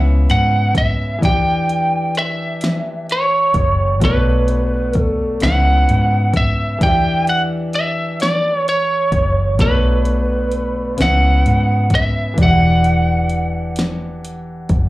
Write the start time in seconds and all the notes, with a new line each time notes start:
Already playing: C#2 C#3 B3 E4 E5
0.30 G#2 F#5, closed hi-hat
0.75 E5, kick, closed hi-hat
1.19 E3 D4, kick
1.23 E2 G4 G5, closed hi-hat
1.29 G5
1.69 closed hi-hat
2.15 E5, closed hi-hat
2.61 snare, closed hi-hat
3.10 C#5, closed hi-hat
3.54 F#1, kick, closed hi-hat
4.00 B1 B2 A3 D4, kick, closed hi-hat
4.05 B4 C#5
4.48 closed hi-hat
4.93 kick, closed hi-hat
5.00 A4
5.40 C#2 C#3 B3 D#4 F#5, snare, closed hi-hat
5.45 E5
5.51 E4
5.89 G#2, closed hi-hat
6.34 E5, kick, closed hi-hat
6.79 E2 E3 D4, kick, closed hi-hat
6.83 G4 G5
6.88 E5
7.27 F#5, closed hi-hat
7.73 E5, closed hi-hat
8.20 D5, snare, closed hi-hat
8.57 C#5
8.68 C#5, closed hi-hat
9.12 F#1, kick, closed hi-hat
9.59 B1 B2 A3 D4 B4, kick, closed hi-hat
9.63 C#5
10.05 closed hi-hat
10.52 closed hi-hat
10.97 C#2 C#3 B3 E4, snare, closed hi-hat
11.02 E5 F#5
11.46 G#2, closed hi-hat
11.90 kick, closed hi-hat
11.95 E5
12.34 E3 D4, kick, closed hi-hat
12.39 E1 G4 F#5
12.44 E5
12.51 F#5
12.84 closed hi-hat
13.29 closed hi-hat
13.76 snare, closed hi-hat
14.25 closed hi-hat
14.69 F#1, kick, closed hi-hat